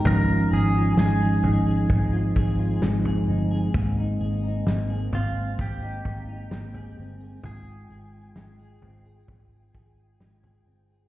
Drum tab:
SD |----o-------o---|----o-------o---|----o-------o---|
FT |o-----o-o----o--|o-----o-o----o--|o-----o-o----o--|
BD |--------o-o-----|o-------o-o-----|--------o-o-----|